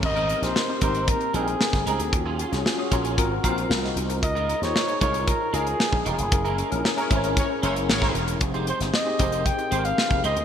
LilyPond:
<<
  \new Staff \with { instrumentName = "Flugelhorn" } { \time 4/4 \key aes \major \tempo 4 = 115 ees''8. c''8. c''8 bes'8 aes'4 aes'8~ | aes'4 r2. | ees''8. des''8. des''8 bes'8 aes'4 aes'8~ | aes'4 r2. |
r8 c''8 ees''4 g''8. f''8. ees''8 | }
  \new Staff \with { instrumentName = "Horn section" } { \time 4/4 \key aes \major r1 | r1 | r1 | r4 r16 <des' aes' bes' des''>16 r8 <des' aes' bes' des''>16 r16 <des' aes' bes' des''>16 r16 <des' aes' bes' des''>8. r16 |
r1 | }
  \new Staff \with { instrumentName = "Tine electric piano" } { \time 4/4 \key aes \major << { r1 | r2. <aes' f''>16 <ges' ees''>16 <ees' c''>16 bes'16~ | bes'16 r2. r8. | r1 |
r1 | } \\ { <c' ees' g' bes'>8. <c' ees' g' bes'>8 <c' ees' g' c''>16 <bes c' ees' g' bes'>4 <c' ees' a' bes' g''>4. | <des' f' ges' aes'>8. <des' f' ges' aes'>8 <des' f' ges' aes'>16 <des' f' ges' bes'>8 <c' f' ges' bes'>8 <ces' c' f' ges' bes'>4. | <ees' f' aes' bes'>8. <ees' f' aes' c''>8 <ees' f' aes' des''>16 <ees' f' aes' bes'>4 <ees' f' aes' bes'>4. | <des' fes' aes' bes'>8. <des' fes' aes' bes'>8 <des' fes' aes' bes'>16 <des' fes' aes' c'' des''>4 <des' fes' aes' bes'>4. |
<c' ees' g' aes'>8. <c' ees' g' aes'>8 <c' ees' g' aes'>16 <c' ees' g' bes'>4 <c' ees' g' aes' bes'>4. | } >> }
  \new Staff \with { instrumentName = "Clean electric guitar" } { \time 4/4 \key aes \major r16 <g c' ees' bes'>16 <g c' ees' bes'>16 r8. <g c' ees' bes'>16 <g c' ees' bes'>16 r8 <g c' ees' bes'>16 r8. <g c' ees' bes'>16 r16 | r16 <ges des' f' aes'>16 <ges des' f' aes'>16 r8. <ges des' f' aes'>16 <ges des' f' aes'>16 r8 <ges c' f' c''>16 r4 r16 | r16 <aes ees' f' bes'>16 <aes ees' f' bes'>16 r8. <aes ees' f' bes'>16 <aes ees' f' bes'>16 r8 <aes ees' f' bes'>16 r8. <aes ees' f' bes'>16 r16 | r16 <aes des' fes' bes'>16 <aes des' fes' bes'>16 r8. <aes des' fes' bes'>16 <aes des' fes' bes'>16 r8 <aes des' fes' c''>16 r8 <aes des' fes' bes'>16 r8 |
r16 <aes ees' g' c''>16 <aes ees' g' c''>16 r8. <aes ees' g' c''>16 <aes ees' g' c''>16 r8 <aes ees' g' c''>16 r8. <aes ees' g' c''>16 r16 | }
  \new Staff \with { instrumentName = "Slap bass" } { \clef bass \time 4/4 \key aes \major aes,,8. bes,,16 r8 aes,,8. r16 bes,,8 r16 g,,16 des,16 d,16 | ees,8. c,16 r8 bes,,8 aes,,8 bes,,8 c,8 c,8 | des,8. ees,16 r8 c,8. r16 des,8 r16 bes,,16 fes,,16 f,,16 | ges,,8. bes,,16 r8 aes,,8. r16 ges,,8 aes,,8 fes,,8 |
f,,8. g,,16 r8 f,,8. r16 aes,,8 r16 f,,16 des,16 d,16 | }
  \new DrumStaff \with { instrumentName = "Drums" } \drummode { \time 4/4 <cymc bd>16 hh16 hh16 <hh sn>16 sn8 <hh bd>16 hh16 <hh bd>16 hh16 hh16 hh16 sn16 <hh bd sn>16 hh16 hh16 | <hh bd>8 hh16 <hh sn>16 sn8 <hh bd>16 hh16 <hh bd>8 <hh bd>16 hh16 sn16 sn16 hh16 hh16 | <hh bd>16 hh16 hh16 <hh sn>16 sn16 hh16 <hh bd>16 hh16 <hh bd>8 hh16 hh16 sn16 bd16 hh16 hh16 | <hh bd>16 hh16 hh16 hh16 sn16 hh16 <hh bd>16 hh16 <hh bd>8 hh16 hh16 sn16 <bd sn>16 hh16 hh16 |
<hh bd>16 hh16 hh16 <hh sn>16 sn8 <hh bd>16 hh16 <hh bd>16 hh16 hh16 hh16 sn16 <hh bd>16 hh16 hh16 | }
>>